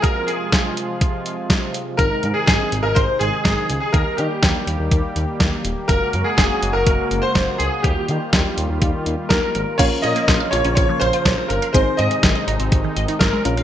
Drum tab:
CC |----------------|----------------|----------------|----------------|
HH |x-x-x-x-x-x-x-x-|x-x-x-x-x-x-x-x-|x-x-x-x-x-x-x-x-|x-x-x-x-x-x-x-x-|
SD |----o-------o---|----o-------o---|----o-------o---|----o-------o---|
BD |o---o---o---o---|o---o---o---o---|o---o---o---o---|o---o---o---o---|

CC |----------------|x---------------|----------------|
HH |x-x-x-x-x-x-x-x-|x-xxx-xxx-xxx-xx|x-xxx-xxx-xxx-xx|
SD |----o-------o---|----o-------o---|----o-------o---|
BD |o---o---o---o---|o---o---o---o---|o---o---o---o---|